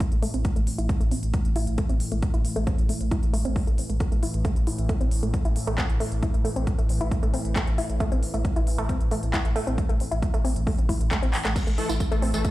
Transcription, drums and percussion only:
0.00 kick loud
0.00 closed hi-hat medium
0.12 closed hi-hat medium
0.23 open hi-hat loud
0.34 closed hi-hat medium
0.45 kick loud
0.45 closed hi-hat medium
0.56 closed hi-hat medium
0.67 open hi-hat loud
0.79 closed hi-hat medium
0.89 kick loud
0.89 closed hi-hat medium
1.01 closed hi-hat medium
1.11 open hi-hat loud
1.23 closed hi-hat medium
1.34 kick loud
1.34 closed hi-hat medium
1.45 closed hi-hat medium
1.56 open hi-hat loud
1.67 closed hi-hat medium
1.78 kick loud
1.78 closed hi-hat medium
1.89 closed hi-hat medium
2.00 open hi-hat loud
2.12 closed hi-hat medium
2.22 kick loud
2.22 closed hi-hat medium
2.34 closed hi-hat medium
2.45 open hi-hat loud
2.56 closed hi-hat medium
2.67 kick loud
2.67 closed hi-hat medium
2.78 closed hi-hat medium
2.89 open hi-hat loud
3.01 closed hi-hat soft
3.11 kick loud
3.11 closed hi-hat medium
3.23 closed hi-hat soft
3.34 open hi-hat loud
3.45 closed hi-hat medium
3.56 kick loud
3.56 open hi-hat medium
3.67 closed hi-hat medium
3.78 open hi-hat loud
3.90 closed hi-hat medium
4.00 kick loud
4.00 closed hi-hat medium
4.12 closed hi-hat medium
4.23 open hi-hat loud
4.34 closed hi-hat medium
4.45 kick loud
4.45 closed hi-hat medium
4.56 closed hi-hat medium
4.67 open hi-hat loud
4.79 closed hi-hat soft
4.89 kick loud
4.89 closed hi-hat medium
5.01 closed hi-hat soft
5.11 open hi-hat loud
5.23 closed hi-hat medium
5.34 kick loud
5.34 closed hi-hat medium
5.45 closed hi-hat medium
5.56 open hi-hat loud
5.67 closed hi-hat medium
5.78 kick loud
5.78 clap loud
5.78 closed hi-hat medium
5.90 closed hi-hat medium
6.00 open hi-hat loud
6.12 closed hi-hat medium
6.23 kick loud
6.23 closed hi-hat medium
6.34 closed hi-hat soft
6.45 open hi-hat loud
6.56 closed hi-hat medium
6.67 kick loud
6.67 closed hi-hat medium
6.79 closed hi-hat soft
6.89 open hi-hat loud
7.01 closed hi-hat medium
7.11 kick loud
7.11 closed hi-hat medium
7.23 closed hi-hat soft
7.34 open hi-hat loud
7.45 closed hi-hat medium
7.56 kick loud
7.56 clap loud
7.56 closed hi-hat medium
7.67 closed hi-hat soft
7.78 open hi-hat loud
7.90 closed hi-hat soft
8.00 kick loud
8.00 closed hi-hat medium
8.12 closed hi-hat medium
8.23 open hi-hat loud
8.34 closed hi-hat medium
8.45 kick loud
8.45 closed hi-hat medium
8.56 closed hi-hat medium
8.67 open hi-hat loud
8.79 closed hi-hat medium
8.89 kick loud
8.89 closed hi-hat medium
9.01 closed hi-hat medium
9.11 open hi-hat loud
9.23 closed hi-hat medium
9.34 kick loud
9.34 clap loud
9.34 closed hi-hat medium
9.45 closed hi-hat medium
9.56 open hi-hat loud
9.67 closed hi-hat medium
9.78 kick loud
9.78 closed hi-hat medium
9.89 closed hi-hat medium
10.00 open hi-hat loud
10.12 closed hi-hat medium
10.22 kick loud
10.22 closed hi-hat medium
10.34 closed hi-hat medium
10.45 open hi-hat loud
10.56 closed hi-hat medium
10.67 kick loud
10.67 open hi-hat medium
10.78 closed hi-hat medium
10.89 kick medium
10.89 open hi-hat loud
11.01 closed hi-hat medium
11.11 kick loud
11.11 clap loud
11.11 closed hi-hat medium
11.23 closed hi-hat medium
11.33 clap medium
11.33 open hi-hat loud
11.45 clap loud
11.45 closed hi-hat medium
11.56 kick loud
11.56 closed hi-hat medium
11.56 crash medium
11.56 tambourine medium
11.67 closed hi-hat medium
11.67 tambourine soft
11.78 open hi-hat loud
11.89 closed hi-hat medium
11.89 tambourine medium
12.00 kick loud
12.00 closed hi-hat medium
12.00 tambourine medium
12.12 closed hi-hat medium
12.12 tambourine soft
12.22 open hi-hat loud
12.34 closed hi-hat medium
12.34 tambourine medium
12.45 kick loud
12.45 closed hi-hat medium
12.45 tambourine medium

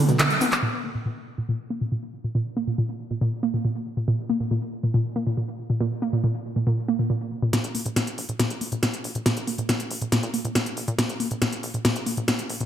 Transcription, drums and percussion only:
0.09 closed hi-hat medium
0.09 shaker soft
0.19 clap loud
0.19 closed hi-hat medium
0.19 mid tom medium
0.19 ride medium
0.19 shaker soft
0.30 closed hi-hat medium
0.30 shaker soft
0.41 open hi-hat medium
0.41 mid tom medium
0.41 shaker medium
0.52 clap medium
0.52 closed hi-hat medium
0.52 shaker soft
7.53 snare soft
7.53 closed hi-hat loud
7.64 closed hi-hat medium
7.75 open hi-hat loud
7.86 closed hi-hat medium
7.96 snare soft
7.96 closed hi-hat loud
8.07 closed hi-hat medium
8.18 open hi-hat medium
8.29 closed hi-hat medium
8.39 snare soft
8.39 closed hi-hat medium
8.50 closed hi-hat medium
8.61 open hi-hat loud
8.72 closed hi-hat medium
8.83 snare soft
8.83 closed hi-hat medium
8.94 closed hi-hat medium
9.04 open hi-hat medium
9.15 closed hi-hat medium
9.26 snare medium
9.26 closed hi-hat medium
9.37 closed hi-hat medium
9.47 open hi-hat loud
9.58 closed hi-hat medium
9.69 snare medium
9.69 closed hi-hat loud
9.80 closed hi-hat medium
9.91 open hi-hat loud
10.01 closed hi-hat medium
10.12 snare medium
10.12 closed hi-hat loud
10.23 closed hi-hat medium
10.34 open hi-hat loud
10.45 closed hi-hat medium
10.55 snare medium
10.55 closed hi-hat medium
10.66 closed hi-hat medium
10.77 open hi-hat medium
10.88 closed hi-hat medium
10.99 snare medium
10.99 closed hi-hat medium
11.09 closed hi-hat medium
11.20 open hi-hat loud
11.31 closed hi-hat medium
11.42 snare medium
11.42 closed hi-hat medium
11.52 closed hi-hat medium
11.63 open hi-hat loud
11.74 closed hi-hat medium
11.85 snare medium
11.85 closed hi-hat medium
11.96 closed hi-hat medium
12.06 open hi-hat loud
12.17 closed hi-hat medium
12.28 snare medium
12.28 closed hi-hat medium
12.39 closed hi-hat medium
12.50 open hi-hat medium
12.60 closed hi-hat medium

